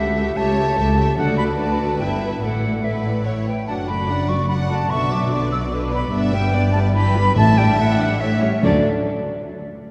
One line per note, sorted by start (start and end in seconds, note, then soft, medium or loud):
0.00 0.31 C#2 medium
0.00 0.14 A3 medium
0.00 0.14 G4 soft
0.00 0.36 A4 medium
0.00 0.14 E5 soft
0.00 0.38 E5 medium
0.15 0.36 A3 medium
0.15 0.36 G4 soft
0.15 0.36 E5 soft
0.36 0.72 C#2 medium
0.36 0.56 A3 medium
0.36 0.56 G4 medium
0.36 0.76 C#5 medium
0.36 0.56 E5 medium
0.36 1.17 A5 medium
0.57 0.76 A3 soft
0.57 0.76 G4 soft
0.57 0.77 E5 medium
0.77 1.13 C#2 medium
0.77 0.97 A3 soft
0.77 0.97 G4 medium
0.77 1.16 A4 medium
0.77 0.97 E5 medium
0.98 1.18 A3 soft
0.98 1.18 G4 soft
0.98 1.18 E5 medium
1.17 1.96 D2 medium
1.17 1.75 D3 medium
1.17 1.56 A3 medium
1.17 1.56 F#4 medium
1.17 1.57 A4 medium
1.17 1.56 D5 medium
1.17 1.37 F#5 medium
1.37 1.43 B5 medium
1.58 1.99 A3 medium
1.58 1.99 F#4 medium
1.58 2.41 B4 medium
1.58 1.99 D5 medium
1.58 1.98 A5 medium
1.98 2.42 G1 medium
1.98 2.42 G2 soft
1.98 2.42 B3 soft
1.98 2.42 E4 soft
1.98 2.40 E5 soft
1.98 2.22 G5 medium
2.41 3.45 A1 soft
2.41 3.45 A2 soft
2.41 2.83 A3 soft
2.41 2.82 E4 soft
2.41 2.79 A4 soft
2.41 2.82 D5 soft
2.41 2.85 F#5 medium
2.83 3.25 A3 soft
2.83 3.25 E4 soft
2.83 3.22 B4 soft
2.83 3.24 D5 soft
2.83 3.25 E5 soft
3.25 3.47 A3 soft
3.25 3.47 E4 soft
3.25 3.46 C#5 soft
3.25 3.47 C#5 soft
3.25 3.31 F#5 soft
3.46 3.68 B4 soft
3.46 3.66 G5 medium
3.67 4.87 F#1 medium
3.67 4.87 F#2 medium
3.67 3.87 F#3 soft
3.67 3.87 D4 soft
3.67 3.87 F#5 soft
3.67 3.73 A5 medium
3.87 4.09 A3 soft
3.87 4.09 F#4 soft
3.87 4.09 D5 soft
3.87 4.30 B5 medium
4.09 4.30 F#3 soft
4.09 4.30 D4 soft
4.09 4.47 D5 soft
4.09 4.29 F#5 soft
4.28 4.50 A3 soft
4.28 4.50 F#4 soft
4.28 4.50 D5 soft
4.28 4.48 C#6 medium
4.48 4.69 F#3 soft
4.48 4.69 D4 soft
4.48 4.69 F#5 soft
4.48 4.90 F#5 medium
4.48 4.54 B5 medium
4.69 4.91 A3 soft
4.69 4.91 F#4 soft
4.69 4.91 D5 soft
4.69 4.91 A5 medium
4.90 6.10 B1 medium
4.90 6.10 B2 soft
4.90 5.11 D3 soft
4.90 5.11 D4 soft
4.90 5.10 B4 soft
4.90 5.31 E5 medium
4.90 5.12 C#6 medium
5.11 5.32 F#3 soft
5.11 5.32 B3 soft
5.11 5.32 D5 soft
5.11 5.51 D6 medium
5.33 5.52 D3 soft
5.33 5.52 D4 soft
5.33 5.52 B4 soft
5.33 5.72 D5 medium
5.52 5.72 F#3 soft
5.52 5.72 B3 soft
5.52 5.72 D5 soft
5.52 5.58 E6 medium
5.72 5.91 D3 soft
5.72 5.91 D4 soft
5.72 6.13 B4 medium
5.72 5.91 B4 medium
5.72 5.78 D6 medium
5.92 6.13 F#3 soft
5.92 6.12 B3 soft
5.92 6.12 D5 soft
5.92 6.12 B5 medium
6.13 7.34 G1 medium
6.13 7.34 G2 medium
6.13 6.32 B3 medium
6.13 6.32 D4 medium
6.13 6.31 D5 soft
6.13 6.52 E5 medium
6.32 6.53 G3 soft
6.32 6.53 B3 medium
6.32 6.53 B4 soft
6.32 6.70 G5 medium
6.53 6.74 B3 medium
6.53 6.74 D4 medium
6.53 6.94 D5 medium
6.53 6.74 D5 medium
6.73 6.95 G3 soft
6.73 6.95 B3 medium
6.73 6.94 B4 medium
6.73 6.79 A5 medium
6.94 7.14 E3 medium
6.94 7.14 E4 medium
6.94 7.14 G4 medium
6.94 7.35 B4 medium
6.94 7.35 B5 medium
7.16 7.37 G3 medium
7.16 7.37 G4 medium
7.16 7.37 B4 medium
7.36 8.40 A1 medium
7.36 7.95 A2 medium
7.36 8.40 A2 medium
7.36 7.56 A3 medium
7.36 7.56 E4 medium
7.36 8.20 E5 medium
7.36 7.56 E5 soft
7.36 7.59 A5 loud
7.57 7.78 G3 medium
7.57 7.78 D4 medium
7.57 7.78 D5 soft
7.57 7.78 G5 medium
7.78 7.99 A3 medium
7.78 7.99 E4 medium
7.78 7.99 E5 medium
7.78 8.22 F#5 medium
7.99 8.20 G3 soft
7.99 8.20 D4 soft
7.99 8.20 D5 medium
8.20 8.40 A3 medium
8.20 8.40 E4 soft
8.20 8.42 C#5 medium
8.20 8.62 E5 medium
8.20 8.40 E5 medium
8.42 8.63 G3 soft
8.42 8.63 C#4 soft
8.42 8.63 C#5 soft
8.63 8.87 D2 medium
8.63 8.86 D3 medium
8.63 8.83 D3 medium
8.63 8.87 F#3 medium
8.63 8.87 D4 medium
8.63 8.86 A4 medium
8.63 8.87 D5 medium